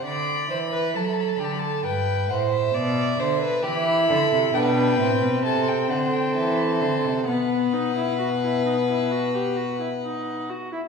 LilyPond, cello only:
\new Staff \with { instrumentName = "Cello" } { \clef bass \time 4/4 \key g \mixolydian \tempo 4 = 66 d8 e8 fis8 d8 g,8 a,8 b,8 d8 | \key b \phrygian e8 d16 c16 b,8 a,16 b,16 c8 d8 e8 d16 c16 | b,2.~ b,8 r8 | }